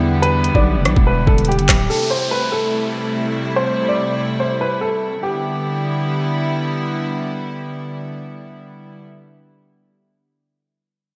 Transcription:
Already playing: 808-style bass E2, string section D3 G3 B3 E4, grand piano E3 D4 G4, upright piano G4
0.22 upright piano B4, closed hi-hat
0.44 closed hi-hat
0.55 808-style bass B1, upright piano D5, kick
0.76 808-style bass F1
0.85 808-style bass B1, cross-stick, closed hi-hat
0.96 808-style bass E1, kick
1.07 upright piano B4
1.27 808-style bass E1, upright piano A4, kick
1.38 closed hi-hat
1.45 upright piano G4, closed hi-hat
1.52 closed hi-hat
1.59 808-style bass G1, closed hi-hat
1.69 808-style bass D1, kick, cross-stick, clap, open hi-hat
1.90 string section C3 G3 A3 E4, upright piano A4, downlifter
2.10 upright piano C5
2.31 upright piano B4
2.52 upright piano A4
3.56 upright piano C5
3.88 upright piano D5
4.40 upright piano C5
4.61 upright piano B4
4.81 upright piano A4
5.23 string section D3 G3 B3 E4, upright piano G4

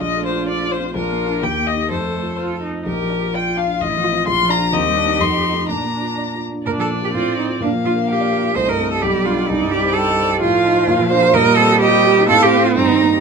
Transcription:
Already playing: cello D4
0.01 grand piano A#1, viola F4, violin D#5
0.16 grand piano A3
0.25 violin C5
0.32 grand piano F4
0.48 grand piano C5, violin D5
0.63 grand piano F4
0.72 violin C5
0.79 grand piano C4
0.94 grand piano A#1, viola D4, cello F4, violin A#4
1.11 grand piano A#3
1.26 grand piano D4 F4
1.42 grand piano D#2, viola A#3, cello G4, violin G5
1.58 grand piano A#3
1.67 violin D#5
1.74 grand piano D#4 G4
1.90 grand piano F2, viola A3, cello A4, violin C5
2.07 grand piano A3
2.23 grand piano F4
2.38 viola F4, grand piano C5
2.54 grand piano F4
2.63 viola D#4
2.70 grand piano C4
2.86 grand piano A#1, cello G4, violin A#4
3.02 grand piano F3
3.10 viola D4
3.18 grand piano F4
3.33 cello F4, grand piano D5, violin G5
3.49 grand piano F4
3.57 viola D4, violin F5
3.65 grand piano D4
3.81 grand piano A1, violin D#5
3.97 grand piano F3
4.04 viola F4
4.12 grand piano C4 F4
4.27 grand piano A#1, cello F4, violin C6
4.43 grand piano F3
4.49 viola D4, violin A#5
4.58 grand piano D4 F4
4.73 grand piano D#2, viola C4, cello G4, violin D#5
4.88 grand piano G3
4.97 viola D4
5.04 grand piano C4 D#4
5.19 grand piano F2, viola D#4, violin C6
5.36 grand piano F3
5.52 grand piano A3 D#4
5.68 grand piano A#2, viola D4, cello D4, violin A#5
5.84 grand piano A#3
6.01 grand piano F4
6.18 grand piano D5
6.35 grand piano F4
6.51 grand piano D4
6.66 grand piano A#2, viola D4, cello A#4, violin D5
6.78 grand piano F3, cello A4
6.91 grand piano D4
7.02 cello G4, grand piano A#4
7.14 grand piano A2, viola C4, cello F4
7.26 grand piano A3
7.37 grand piano C4, cello D#4
7.49 grand piano F4
7.60 grand piano A#2, viola A#3, cello D4, violin F5
7.72 grand piano F3
7.84 grand piano D4, cello F4
7.96 grand piano A#4
8.08 cello G4, grand piano F5
8.21 grand piano D5
8.32 grand piano A#4
8.44 grand piano F4
8.55 grand piano C2, viola A3, cello C5, violin D#5
8.67 grand piano G2, cello A#4
8.79 grand piano C4
8.91 grand piano G4, cello A4
9.02 grand piano B1, viola G3, cello G4, violin D5
9.14 grand piano B2
9.25 grand piano D4, cello F4
9.37 grand piano G4
9.48 grand piano C2, viola G3, cello D#4
9.61 grand piano G2
9.71 grand piano D#4, cello G4
9.85 grand piano C5
9.94 cello A4, grand piano G5
10.07 grand piano D#5
10.19 grand piano C5
10.30 grand piano G4
10.41 grand piano A2, viola F3, cello F4, violin F5
10.54 grand piano A3
10.65 grand piano D#4
10.76 grand piano C5
10.87 grand piano A#2, violin F5
10.99 grand piano F3
11.10 grand piano D4, cello C5
11.22 grand piano A#4
11.34 grand piano A#2, viola G3, cello A#4, violin D#5
11.45 grand piano A#3
11.57 grand piano C4, cello A4
11.69 grand piano G4
11.81 cello G4, grand piano D#5, violin D#5
11.92 grand piano C5
12.04 grand piano G4
12.17 grand piano D#4
12.28 grand piano A2, viola C4, cello A4, violin F5
12.41 grand piano A3, cello G4
12.52 grand piano C4
12.65 grand piano F4, cello F4
12.76 grand piano G2, cello D#4, violin A#5
12.88 grand piano D#3
13.01 grand piano A#3
13.13 grand piano G4

